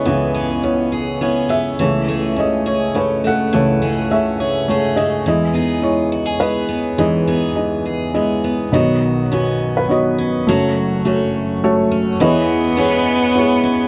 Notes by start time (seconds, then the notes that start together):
Already playing: C#2 C#3 B3 C#4 E4 G#4 A4 B4 C#5 D#5
0.05 C#2 C#3 E3 B3 E4 C#5
0.34 B3 C#4 G#4
0.62 B3 C#4 E4 C#5
0.92 G#4
1.21 B3 C#4 E4 G#4 C#5
1.49 B3 G#4 E5
1.79 C#2 C#3 E3 A3 G#4 C#5
2.08 A3 C#4 G#4
2.36 A3 C#4 G#4 C#5 D#5
2.66 G#4 C#5
2.95 A3 C#4 G#4 B4 C#5
3.24 A3 F#5
3.28 A4
3.53 C#2 C#3 E3 A3 A4 C#5
3.82 A3 C#4 G#4
4.11 A3 C#4 G#4 C#5 E5
4.40 G#4 C#5
4.68 A3 C#4 G#4 C#5
4.96 A3 G#4 D#5
5.26 E2 E3 G#3 E4 D#5
5.54 B3 D#4 G#4
5.82 G#3 E4 C#5 D#5
6.12 F#4
6.26 G#4
6.39 G#3 B3 E4 G#4 B4 D#5
6.69 B3
6.98 E2 E3 G#3 D#4 G#4 D#5
7.27 B3 D#4 G#4
7.55 G#3 D#4 D#5
7.85 G#4
8.14 G#3 B3 E4 G#4 D#5
8.44 B3
8.72 B1 B2 D#3 B3 D#4 F#4 C#5 D#5
9.31 B3 C#4 D#4 F#4 C#5
9.77 B4
9.88 B3 D#4 F#4 C#5 D#5
10.18 C#4
10.47 F#1 F#2 F#3 A3 F#4 A4 C#5
11.05 A3 C#4 F#4 C#5
11.64 A3 F#4 C#5
11.91 C#4
12.20 E2 E3 B3 E4 G#4 B4 C#5 D#5
12.77 B3 C#4 E4 G#4 C#5
13.35 B3 E4 G#4 C#5
13.63 C#4